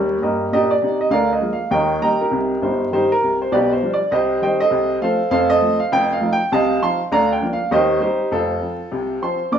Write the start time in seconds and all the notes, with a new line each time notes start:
Already playing: D#2 G3 G4 A#4 D5
0.22 G2 A#3 G4 A#4 D#5
0.52 A#2 D4 G4 A#4 D#5
0.71 D5
0.82 C3 D#4
1.01 D#5
1.10 D2 D3 A#4 D5 F5
1.33 D#5
1.41 F3 G#3 A#3
1.53 F5
1.71 D#2 D#3 A#4 D#5 G5
2.02 D#3 G3 A#3 D#5 G5 A#5
2.21 D#4 G4 A#4
2.31 C2 C3
2.62 G1 G2 D#4 G4 C5
2.92 D#3 G3 D#4 G4 C5
3.12 A#4
3.23 C2 C3
3.42 C5
3.52 B1 B2 G4 B4 D5
3.73 C5
3.82 F3 G3 D4
3.93 D5
4.11 C2 C3 G4 C5 D#5
4.42 D#3 G3 C4 C5 D#5 G5
4.60 A4 C5 D#5
4.71 C2 C3
5.01 F3 A3 C4 A4 C5 F5
5.30 F1 F2 A4 C5 F5
5.50 A4 C5 D#5
5.61 F3 A3 C4
5.80 F5
5.92 F1 F2 G5
6.13 F5
6.21 F3 A3 D#4
6.33 G5
6.52 C2 C3 D#5 F5 A5
6.82 F3 C4 D#4 F5 A5 C6
7.12 D2 D3 D5 F5 A#5
7.32 G5
7.42 F3 A#3 D4
7.53 F5
7.71 D#2 D#3 G4 C5 D#5
8.00 G3 C4 D#4 G4 C5
8.31 F1 F2 C4 F4 A4
8.61 F3 C4
8.92 C2 C3
9.22 F3 C4 C5 A5 C6
9.52 A#1 A#2 D5 D6